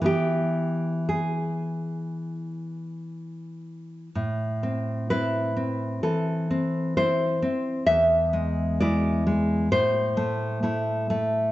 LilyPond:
\new Staff \with { instrumentName = "Nylon-string guitar" } { \time 4/4 \key a \minor \tempo 4 = 64 << { g'4 gis'2~ gis'8 r8 | r4 b'4 a'4 c''4 | e''4 d''4 c''2 | } \\ { <e b e'>1 | a,8 c'8 <c' e'>8 c'8 e8 c'8 <c' e'>8 c'8 | e,8 gis8 <gis e'>8 gis8 a,8 a8 <a e'>8 a8 | } >> }